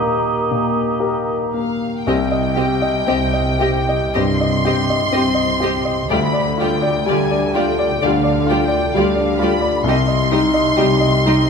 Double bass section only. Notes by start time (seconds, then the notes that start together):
2.06 C2
3.07 C2
4.15 C2
5.13 C2
6.10 D2
7.08 D2
8.02 D2
8.95 D2
9.87 C2
10.77 C2